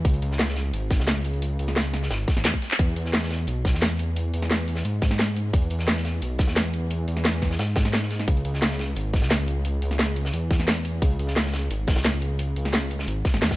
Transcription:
0.05 detuned saw bass C#2, kick, closed hi-hat
0.14 closed hi-hat
0.22 detuned saw bass C#2, closed hi-hat
0.32 snare
0.39 snare, closed hi-hat
0.48 snare
0.56 snare, closed hi-hat
0.73 detuned saw bass G#1, closed hi-hat
0.90 kick, snare, closed hi-hat
1.00 detuned saw bass C#2, snare
1.07 snare, closed hi-hat
1.17 detuned saw bass C#2
1.24 closed hi-hat
1.33 closed hi-hat
1.42 closed hi-hat
1.59 detuned saw bass C#2, closed hi-hat
1.68 snare, closed hi-hat
1.76 snare, closed hi-hat
1.85 closed hi-hat
1.93 snare, closed hi-hat
2.03 snare
2.11 detuned saw bass G#1, snare, closed hi-hat
2.28 kick, snare, closed hi-hat
2.37 detuned saw bass G#1, snare
2.45 detuned saw bass E2, snare, clap, closed hi-hat
2.54 kick, closed hi-hat
2.62 snare, closed hi-hat
2.71 clap
2.79 detuned saw bass E2, kick, closed hi-hat
2.89 closed hi-hat
2.96 detuned saw bass E2, closed hi-hat
3.06 snare
3.13 snare, closed hi-hat
3.23 snare
3.31 snare, closed hi-hat
3.47 detuned saw bass B1, closed hi-hat
3.65 kick, snare, closed hi-hat
3.74 detuned saw bass E2, snare
3.82 snare, closed hi-hat
3.91 detuned saw bass E2
3.99 closed hi-hat
4.16 closed hi-hat
4.33 detuned saw bass E2, closed hi-hat
4.42 snare
4.51 snare, closed hi-hat
4.68 closed hi-hat
4.75 snare
4.85 detuned saw bass G#2, closed hi-hat
5.02 kick, snare, closed hi-hat
5.11 snare
5.19 snare, closed hi-hat
5.28 closed hi-hat
5.36 closed hi-hat
5.53 detuned saw bass E2, kick, closed hi-hat
5.62 closed hi-hat
5.70 detuned saw bass E2, closed hi-hat
5.79 snare
5.87 snare, closed hi-hat
5.96 snare
6.05 snare, closed hi-hat
6.22 detuned saw bass B1, closed hi-hat
6.39 kick, snare, closed hi-hat
6.48 detuned saw bass E2, snare
6.56 snare, closed hi-hat
6.65 detuned saw bass E2
6.73 closed hi-hat
6.90 closed hi-hat
7.08 detuned saw bass E2, closed hi-hat
7.17 snare
7.25 snare, closed hi-hat
7.42 kick, snare, closed hi-hat
7.51 snare
7.59 detuned saw bass G#2, snare, closed hi-hat
7.76 kick, snare, closed hi-hat
7.85 snare
7.93 snare, closed hi-hat
8.03 snare
8.11 snare, closed hi-hat
8.19 snare
8.28 detuned saw bass C#2, kick, closed hi-hat
8.37 closed hi-hat
8.45 detuned saw bass C#2, closed hi-hat
8.54 snare
8.62 snare, closed hi-hat
8.71 snare
8.79 snare, closed hi-hat
8.96 detuned saw bass G#1, closed hi-hat
9.14 kick, snare, closed hi-hat
9.22 detuned saw bass C#2, snare
9.30 snare, closed hi-hat
9.39 detuned saw bass C#2
9.48 closed hi-hat
9.65 closed hi-hat
9.82 detuned saw bass C#2, closed hi-hat
9.91 snare
9.99 snare, closed hi-hat
10.16 closed hi-hat
10.25 snare
10.33 detuned saw bass E2, closed hi-hat
10.51 kick, snare, closed hi-hat
10.60 snare
10.68 snare, closed hi-hat
10.77 closed hi-hat
10.85 closed hi-hat
11.02 detuned saw bass C#2, kick, closed hi-hat
11.11 closed hi-hat
11.19 detuned saw bass C#2, closed hi-hat
11.27 snare
11.36 snare, closed hi-hat
11.45 snare
11.53 snare, closed hi-hat
11.71 detuned saw bass G#1, closed hi-hat
11.87 kick, snare, closed hi-hat
11.96 detuned saw bass C#2, snare, closed hi-hat
12.04 snare, closed hi-hat
12.14 detuned saw bass C#2
12.22 closed hi-hat
12.39 closed hi-hat
12.56 detuned saw bass C#2, closed hi-hat
12.65 snare, closed hi-hat
12.73 snare, closed hi-hat
12.82 closed hi-hat
12.91 closed hi-hat
12.99 snare
13.08 detuned saw bass G#1, closed hi-hat
13.25 kick, snare, closed hi-hat
13.34 detuned saw bass G#1, snare
13.42 detuned saw bass E2, snare, closed hi-hat
13.51 kick, snare, closed hi-hat

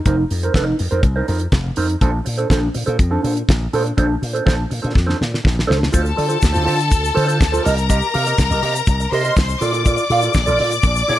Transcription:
0.06 slap bass F1, clean electric guitar D#4 A#4 C5, kick, closed hi-hat
0.18 muted clean electric guitar stroke
0.30 slap bass F2, muted clean electric guitar stroke, open hi-hat
0.43 clean electric guitar D#4 A#4 C5, closed hi-hat
0.54 slap bass F1, clean electric guitar D#4 A#4 C5, kick, snare, closed hi-hat
0.67 muted clean electric guitar stroke
0.79 slap bass F2, muted clean electric guitar stroke, open hi-hat
0.91 slap bass F2, clean electric guitar D#4 A#4 C5, closed hi-hat
1.03 slap bass C2, kick, closed hi-hat
1.16 clean electric guitar D#4 A#4 C5
1.28 slap bass F2, clean electric guitar D#4 A#4 C5, open hi-hat
1.39 muted clean electric guitar stroke, closed hi-hat
1.52 slap bass F1, muted clean electric guitar stroke, kick, snare, closed hi-hat
1.64 muted clean electric guitar stroke
1.76 slap bass F2, clean electric guitar D#4 A#4 C5, open hi-hat
1.89 muted clean electric guitar stroke, closed hi-hat
2.01 slap bass A#1, clean electric guitar D4 A4 C5, kick, closed hi-hat
2.13 muted clean electric guitar stroke
2.25 slap bass A#2, muted clean electric guitar stroke, open hi-hat
2.38 clean electric guitar D4 A4 C5, closed hi-hat
2.50 slap bass A#1, clean electric guitar D4 A4 C5, kick, snare, closed hi-hat
2.62 muted clean electric guitar stroke
2.74 slap bass A#2, muted clean electric guitar stroke, open hi-hat
2.86 slap bass A#2, clean electric guitar D4 A4 C5, closed hi-hat
2.99 slap bass F2, muted clean electric guitar stroke, kick, closed hi-hat
3.11 clean electric guitar D4 A4 C5
3.23 slap bass A#2, clean electric guitar D4 A4 C5, open hi-hat
3.36 muted clean electric guitar stroke, closed hi-hat
3.49 slap bass A#1, kick, snare, closed hi-hat
3.61 muted clean electric guitar stroke
3.73 slap bass A#2, clean electric guitar D4 A4 C5, open hi-hat
3.85 muted clean electric guitar stroke, closed hi-hat
3.97 slap bass A#1, clean electric guitar D4 A4 C5, kick, closed hi-hat
4.09 muted clean electric guitar stroke
4.22 slap bass A#2, muted clean electric guitar stroke, open hi-hat
4.33 clean electric guitar D4 A4 C5, closed hi-hat
4.46 slap bass A#1, clean electric guitar D4 A4 C5, kick, snare, closed hi-hat
4.58 muted clean electric guitar stroke
4.70 slap bass A#2, muted clean electric guitar stroke, open hi-hat
4.82 slap bass A#2, clean electric guitar D4 A4 C5, closed hi-hat
4.94 slap bass F2, muted clean electric guitar stroke, kick, snare
5.06 clean electric guitar D4 A4 C5, snare
5.19 slap bass A#2, muted clean electric guitar stroke, snare
5.31 muted clean electric guitar stroke, snare
5.43 slap bass A#1, muted clean electric guitar stroke, kick, snare
5.55 muted clean electric guitar stroke
5.59 snare
5.67 slap bass C#2, clean electric guitar D4 A4 C5, snare
5.80 muted clean electric guitar stroke, snare
5.92 slap bass D2, clean electric guitar F4 A4 C5, string section A4 A5, kick, closed hi-hat, shaker
6.05 muted clean electric guitar stroke, shaker
6.16 slap bass D3, clean electric guitar F4 A4 D5, open hi-hat
6.28 clean electric guitar F4 A4 C5, closed hi-hat, shaker
6.40 slap bass D2, muted clean electric guitar stroke, kick, closed hi-hat, shaker
6.44 snare
6.52 slap bass D2, clean electric guitar F4 A4 C5, shaker
6.65 slap bass D3, clean electric guitar F4 A4 C5, open hi-hat
6.77 muted clean electric guitar stroke, closed hi-hat, shaker
6.91 slap bass D2, muted clean electric guitar stroke, kick, closed hi-hat, shaker
7.02 muted clean electric guitar stroke, shaker
7.14 slap bass D3, clean electric guitar F4 A4 C5, open hi-hat
7.27 clean electric guitar F4 A4 C5, closed hi-hat, shaker
7.41 slap bass D2, muted clean electric guitar stroke, kick, snare, closed hi-hat, shaker
7.52 clean electric guitar F4 A4 C5, shaker
7.64 slap bass C2, clean electric guitar G4 A#4 D#5, string section A#4 A#5, open hi-hat, shaker
7.77 muted clean electric guitar stroke, closed hi-hat, shaker
7.89 clean electric guitar G4 A#4 D#5, kick, closed hi-hat, shaker
8.01 muted clean electric guitar stroke, shaker
8.14 slap bass C3, clean electric guitar G4 A#4 F5, open hi-hat
8.26 clean electric guitar G4 A#4 D#5, closed hi-hat, shaker
8.38 slap bass C2, kick, snare, closed hi-hat, shaker
8.51 slap bass C2, clean electric guitar G4 A#4 D#5, shaker
8.63 slap bass C3, clean electric guitar G4 A#4 D#5, open hi-hat
8.76 muted clean electric guitar stroke, closed hi-hat, shaker
8.87 slap bass C2, muted clean electric guitar stroke, kick, closed hi-hat, shaker
9.00 muted clean electric guitar stroke, shaker
9.12 slap bass C3, clean electric guitar G4 A#4 D#5, string section C5 C6, open hi-hat
9.24 clean electric guitar G4 A#4 D#5, closed hi-hat, shaker
9.36 slap bass C2, kick, snare, closed hi-hat, shaker
9.48 muted clean electric guitar stroke, shaker
9.61 slap bass A#2, clean electric guitar F4 A4 D5, string section D5 D6, open hi-hat, shaker
9.73 clean electric guitar F4 A4 D5, closed hi-hat, shaker
9.86 clean electric guitar F4 A4 D5, kick, closed hi-hat, shaker
9.97 muted clean electric guitar stroke, shaker
10.10 slap bass A#2, clean electric guitar F4 A4 F5, open hi-hat
10.22 clean electric guitar F4 A4 D5, closed hi-hat, shaker
10.34 slap bass A#1, kick, snare, closed hi-hat, shaker
10.46 slap bass A#1, clean electric guitar F4 A4 D5, shaker
10.59 slap bass A#2, clean electric guitar F4 A4 D5, open hi-hat
10.71 muted clean electric guitar stroke, closed hi-hat, shaker
10.82 slap bass A#1, muted clean electric guitar stroke, kick, closed hi-hat, shaker
10.96 muted clean electric guitar stroke, shaker
11.08 slap bass A#2, clean electric guitar F4 A4 D5, open hi-hat

